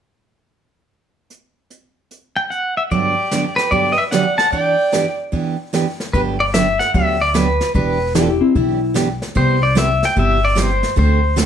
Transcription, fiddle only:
0, 0, Header, 1, 2, 480
1, 0, Start_track
1, 0, Key_signature, 1, "major"
1, 0, Tempo, 402955
1, 1547, Time_signature, 4, 2, 24, 8
1, 13648, End_track
2, 0, Start_track
2, 0, Title_t, "Fiddle"
2, 0, Program_c, 0, 110
2, 3469, Note_on_c, 0, 67, 72
2, 4213, Note_off_c, 0, 67, 0
2, 4258, Note_on_c, 0, 67, 66
2, 4417, Note_off_c, 0, 67, 0
2, 4431, Note_on_c, 0, 67, 71
2, 4647, Note_off_c, 0, 67, 0
2, 4669, Note_on_c, 0, 71, 56
2, 4724, Note_off_c, 0, 71, 0
2, 4731, Note_on_c, 0, 71, 81
2, 4810, Note_off_c, 0, 71, 0
2, 4890, Note_on_c, 0, 74, 71
2, 5189, Note_off_c, 0, 74, 0
2, 5206, Note_on_c, 0, 78, 84
2, 5368, Note_off_c, 0, 78, 0
2, 5375, Note_on_c, 0, 74, 74
2, 6126, Note_off_c, 0, 74, 0
2, 13648, End_track
0, 0, End_of_file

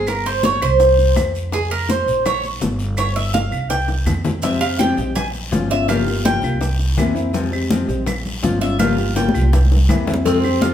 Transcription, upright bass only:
0, 0, Header, 1, 2, 480
1, 0, Start_track
1, 0, Tempo, 363636
1, 99, Time_signature, 4, 2, 24, 8
1, 14174, End_track
2, 0, Start_track
2, 0, Title_t, "Upright bass"
2, 0, Program_c, 0, 32
2, 0, Note_on_c, 0, 31, 86
2, 737, Note_off_c, 0, 31, 0
2, 817, Note_on_c, 0, 36, 96
2, 1487, Note_off_c, 0, 36, 0
2, 1530, Note_on_c, 0, 41, 86
2, 2656, Note_off_c, 0, 41, 0
2, 2723, Note_on_c, 0, 34, 93
2, 3399, Note_off_c, 0, 34, 0
2, 3449, Note_on_c, 0, 31, 94
2, 4575, Note_off_c, 0, 31, 0
2, 4636, Note_on_c, 0, 36, 90
2, 5315, Note_off_c, 0, 36, 0
2, 5355, Note_on_c, 0, 41, 94
2, 6488, Note_off_c, 0, 41, 0
2, 6566, Note_on_c, 0, 34, 87
2, 7240, Note_off_c, 0, 34, 0
2, 7273, Note_on_c, 0, 31, 92
2, 8408, Note_off_c, 0, 31, 0
2, 8486, Note_on_c, 0, 36, 94
2, 9160, Note_off_c, 0, 36, 0
2, 9207, Note_on_c, 0, 41, 89
2, 10335, Note_off_c, 0, 41, 0
2, 10401, Note_on_c, 0, 34, 91
2, 11078, Note_off_c, 0, 34, 0
2, 11125, Note_on_c, 0, 31, 91
2, 12254, Note_off_c, 0, 31, 0
2, 12331, Note_on_c, 0, 36, 97
2, 13003, Note_off_c, 0, 36, 0
2, 13052, Note_on_c, 0, 41, 90
2, 14174, Note_off_c, 0, 41, 0
2, 14174, End_track
0, 0, End_of_file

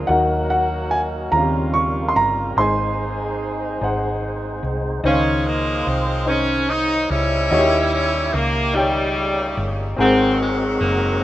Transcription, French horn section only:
0, 0, Header, 1, 2, 480
1, 0, Start_track
1, 0, Key_signature, -5, "major"
1, 0, Tempo, 824176
1, 55, Time_signature, 6, 3, 24, 8
1, 6544, End_track
2, 0, Start_track
2, 0, Title_t, "French horn section"
2, 0, Program_c, 0, 60
2, 0, Note_on_c, 0, 58, 57
2, 58, Note_on_c, 0, 63, 58
2, 59, Note_on_c, 0, 54, 62
2, 60, Note_on_c, 0, 66, 69
2, 759, Note_off_c, 0, 58, 0
2, 773, Note_off_c, 0, 63, 0
2, 774, Note_off_c, 0, 54, 0
2, 774, Note_off_c, 0, 66, 0
2, 779, Note_on_c, 0, 49, 46
2, 780, Note_on_c, 0, 65, 59
2, 782, Note_on_c, 0, 55, 53
2, 783, Note_on_c, 0, 58, 55
2, 1494, Note_off_c, 0, 49, 0
2, 1494, Note_on_c, 0, 68, 64
2, 1495, Note_off_c, 0, 65, 0
2, 1496, Note_off_c, 0, 55, 0
2, 1499, Note_on_c, 0, 63, 60
2, 1503, Note_on_c, 0, 56, 63
2, 2924, Note_off_c, 0, 58, 0
2, 2926, Note_off_c, 0, 68, 0
2, 2928, Note_off_c, 0, 63, 0
2, 2930, Note_off_c, 0, 56, 0
2, 6544, End_track
0, 0, End_of_file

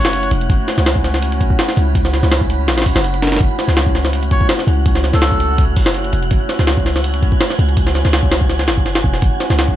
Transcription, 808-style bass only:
0, 0, Header, 1, 2, 480
1, 0, Start_track
1, 0, Key_signature, 3, "minor"
1, 0, Tempo, 363636
1, 655, Time_signature, 4, 2, 24, 8
1, 12883, End_track
2, 0, Start_track
2, 0, Title_t, "808-style bass"
2, 0, Program_c, 0, 38
2, 0, Note_on_c, 0, 30, 88
2, 397, Note_off_c, 0, 30, 0
2, 414, Note_on_c, 0, 28, 104
2, 632, Note_off_c, 0, 28, 0
2, 654, Note_on_c, 0, 30, 103
2, 769, Note_off_c, 0, 30, 0
2, 1025, Note_on_c, 0, 37, 80
2, 1963, Note_off_c, 0, 37, 0
2, 2337, Note_on_c, 0, 37, 102
2, 2923, Note_off_c, 0, 37, 0
2, 2941, Note_on_c, 0, 37, 79
2, 3534, Note_on_c, 0, 33, 85
2, 3554, Note_off_c, 0, 37, 0
2, 3774, Note_on_c, 0, 37, 80
2, 3794, Note_off_c, 0, 33, 0
2, 3889, Note_off_c, 0, 37, 0
2, 3899, Note_on_c, 0, 30, 108
2, 4475, Note_off_c, 0, 30, 0
2, 4494, Note_on_c, 0, 30, 104
2, 4609, Note_off_c, 0, 30, 0
2, 4856, Note_on_c, 0, 37, 79
2, 5799, Note_off_c, 0, 37, 0
2, 6167, Note_on_c, 0, 37, 102
2, 6758, Note_off_c, 0, 37, 0
2, 6779, Note_on_c, 0, 37, 81
2, 7611, Note_on_c, 0, 30, 92
2, 7631, Note_off_c, 0, 37, 0
2, 8075, Note_off_c, 0, 30, 0
2, 8092, Note_on_c, 0, 28, 102
2, 8311, Note_off_c, 0, 28, 0
2, 8332, Note_on_c, 0, 30, 99
2, 8448, Note_off_c, 0, 30, 0
2, 8701, Note_on_c, 0, 37, 79
2, 9641, Note_off_c, 0, 37, 0
2, 10017, Note_on_c, 0, 37, 109
2, 10603, Note_off_c, 0, 37, 0
2, 10625, Note_on_c, 0, 37, 80
2, 11455, Note_on_c, 0, 30, 90
2, 11475, Note_off_c, 0, 37, 0
2, 11917, Note_off_c, 0, 30, 0
2, 11935, Note_on_c, 0, 28, 97
2, 12152, Note_off_c, 0, 28, 0
2, 12176, Note_on_c, 0, 30, 102
2, 12290, Note_off_c, 0, 30, 0
2, 12541, Note_on_c, 0, 37, 79
2, 12883, Note_off_c, 0, 37, 0
2, 12883, End_track
0, 0, End_of_file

